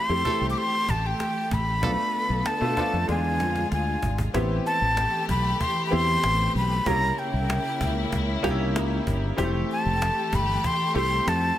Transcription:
Already playing: E3 A3 C4 E4 G4 C6
0.09 F2 A3 C4 E4 G4
0.25 E3 A3 C4 E4 G4 A4, cajon bass
0.41 C2
0.50 D6
0.57 C6, cajon slap
0.88 A1 A5, cajon bass
1.06 G5
1.20 cajon slap
1.36 cajon slap
1.51 A1 B5, cajon bass
1.82 B1 D3 F3 A3 B3 D4 F4 A4, cajon bass
2.14 cajon slap
2.29 B1
2.46 A5, cajon slap
2.61 B2 A3 B3 D4 F4
2.77 F3 A3 B3 D4 F4 A4, cajon bass
2.93 F2, cajon slap
3.08 E2 D3 G#3 B3 D4 F4 G#5, cajon slap
3.40 F2, cajon slap
3.56 cajon slap
3.71 D2 G#5, cajon slap
4.03 G#1, cajon bass
4.18 cajon bass
4.34 A1 E3 A3 B3 C4 E4 G4, cajon bass
4.66 A5, cajon slap
4.81 A1
4.97 cajon slap
5.29 B1 B5, cajon bass
5.45 cajon slap
5.61 C6, cajon bass, cajon slap
5.77 cajon slap
5.86 B5
5.90 E2 B3 C4 E4 G4 C6, cajon slap
6.23 A1, cajon slap
6.55 B1 B5
6.86 C2 C#3 A#3 C#4 E4 G4 A#5, cajon bass
7.18 G5, cajon slap
7.33 C2
7.50 cajon slap
7.81 C#2, cajon bass
7.97 cajon slap
8.12 C#2, cajon bass, cajon slap
8.29 cajon slap
8.43 C2 A#3 C#4 D#4 G4, cajon bass
8.50 E4
8.60 cajon slap
8.75 C#2, cajon slap
9.07 G1, cajon bass
9.37 F1 E3 G3 A3 C4 E4 G4, cajon bass
9.43 A3
9.70 A5, cajon slap
9.86 F1
10.02 cajon slap
10.32 G1 B5, cajon bass
10.64 C6, cajon bass, cajon slap
10.81 cajon slap
10.94 C2 A3 C4 E4 G4 C6
11.27 F2 A5, cajon slap

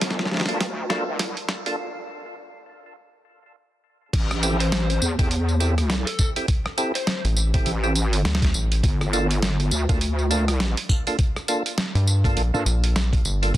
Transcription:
Already playing: G1
0.01 snare, closed hi-hat
0.10 snare
0.19 snare
0.26 snare
0.31 D2, snare
0.34 snare
0.37 snare
0.40 snare
0.46 D2 A#3 D4 F4 A4, snare, closed hi-hat
0.61 snare, closed hi-hat
0.90 A#3 D4 F4 A4, snare
1.08 C#2
1.19 snare, closed hi-hat
1.37 closed hi-hat
1.49 snare
1.66 A#3 D4 F4 A4, closed hi-hat
4.13 A1, kick, closed hi-hat, crash, tambourine
4.31 cross-stick, tambourine
4.43 C4 E4 G4 A4, closed hi-hat, tambourine
4.60 C5, closed hi-hat, tambourine
4.72 snare, closed hi-hat, tambourine
4.90 closed hi-hat, tambourine
5.02 E2, tambourine
5.19 E2 C4 E4 G4 A4, kick, closed hi-hat, tambourine
5.31 closed hi-hat, tambourine
5.49 tambourine
5.60 C4 E4 G4 A4, closed hi-hat, tambourine
5.78 cross-stick, closed hi-hat, tambourine
5.90 snare, closed hi-hat, tambourine
6.06 A4, closed hi-hat, tambourine
6.19 kick, tambourine
6.36 C4 E4 G4 A4, closed hi-hat, tambourine
6.48 kick, closed hi-hat, tambourine
6.66 cross-stick
6.78 C4 E4 G4 A4, closed hi-hat, tambourine
6.95 C5, closed hi-hat, tambourine
7.07 C5, snare, closed hi-hat, tambourine
7.25 A1, closed hi-hat, tambourine
7.37 tambourine
7.54 C4 E4 G4 A4, kick, closed hi-hat, tambourine
7.66 A1, closed hi-hat, tambourine
7.83 C4 E4 G4 A4, tambourine
7.95 closed hi-hat, tambourine
8.06 G#1
8.13 closed hi-hat, tambourine
8.25 D2, snare, closed hi-hat, tambourine
8.35 snare
8.42 kick, snare, closed hi-hat, tambourine
8.54 A1, tambourine
8.72 closed hi-hat, tambourine
8.83 G1, kick, closed hi-hat, tambourine
9.01 cross-stick, tambourine
9.13 A#3 D4 F4 A4, closed hi-hat, tambourine
9.31 closed hi-hat, tambourine
9.42 snare, closed hi-hat, tambourine
9.60 closed hi-hat, tambourine
9.71 D2, tambourine
9.89 D2 A#3 D4 F4 A4, kick, closed hi-hat, tambourine
10.01 closed hi-hat, tambourine
10.19 tambourine
10.31 A#3 D4 F4 A4, closed hi-hat, tambourine
10.48 cross-stick, closed hi-hat, tambourine
10.60 snare, closed hi-hat, tambourine
10.77 closed hi-hat, tambourine
10.89 kick, tambourine
11.07 A#3 D4 F4 A4, closed hi-hat, tambourine
11.19 kick, closed hi-hat, tambourine
11.36 cross-stick, tambourine
11.48 A#3 D4 F4 A4, closed hi-hat, tambourine
11.66 closed hi-hat, tambourine
11.78 snare, closed hi-hat, tambourine
11.95 G2, closed hi-hat, tambourine
12.07 tambourine
12.24 A#3 D4 F4 A4, kick, closed hi-hat, tambourine
12.37 A#1, closed hi-hat, tambourine
12.54 G2 A#3 D4 F4 A4, tambourine
12.66 A#1, closed hi-hat, tambourine
12.84 closed hi-hat, tambourine
12.96 snare, closed hi-hat, tambourine
13.13 kick, closed hi-hat, tambourine
13.25 G1, tambourine
13.42 A#3 D4 F4 A4, closed hi-hat, tambourine
13.54 A1, kick

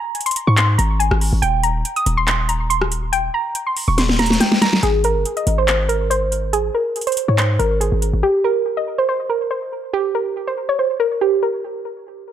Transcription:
Already playing: A#5
0.15 closed hi-hat
0.21 closed hi-hat
0.26 C6, closed hi-hat
0.31 closed hi-hat
0.36 closed hi-hat
0.47 G#2 C#6
0.57 C6, clap, closed hi-hat
0.78 G#1 A#5, closed hi-hat
1.00 G#5, closed hi-hat
1.11 G#1, cross-stick
1.21 open hi-hat
1.33 G#1
1.42 D#1 G5, closed hi-hat
1.63 A#5, closed hi-hat
1.85 closed hi-hat
1.96 D#6, closed hi-hat
2.06 D#1, closed hi-hat
2.17 C6
2.28 C6, clap, closed hi-hat
2.49 A#5, closed hi-hat
2.70 C6, closed hi-hat
2.82 cross-stick
2.92 closed hi-hat
3.13 G5, closed hi-hat
3.34 A#5
3.55 closed hi-hat
3.67 C6
3.77 open hi-hat
3.88 D#1 C#6
3.98 C6, snare, closed hi-hat
4.09 snare
4.19 A#5, snare, closed hi-hat
4.26 closed hi-hat
4.30 snare, closed hi-hat
4.40 G5, snare, closed hi-hat
4.52 snare
4.62 A#5, snare, closed hi-hat
4.73 snare
4.83 G#1 G#4, closed hi-hat
5.04 A#4, closed hi-hat
5.16 G1
5.25 closed hi-hat
5.37 D#5, closed hi-hat
5.47 G#1, closed hi-hat
5.58 C5
5.68 C5, clap, closed hi-hat
5.89 A#4, closed hi-hat
6.10 C5, closed hi-hat
6.32 closed hi-hat
6.53 G#4, closed hi-hat
6.75 A#4
6.96 closed hi-hat
7.01 closed hi-hat
7.07 C5, closed hi-hat
7.12 closed hi-hat
7.17 closed hi-hat
7.28 G#2 C#5
7.38 C5, clap, closed hi-hat
7.59 G#1 A#4, closed hi-hat
7.81 G#4, closed hi-hat
7.92 G#1
8.02 closed hi-hat
8.13 G#1
8.23 G4
8.44 A#4
8.77 D#5
8.98 C5
9.09 C5
9.30 A#4
9.51 C5
9.93 G4
10.15 A#4
10.47 C5
10.69 C#5
10.79 C5
11.00 A#4
11.21 G4
11.43 A#4

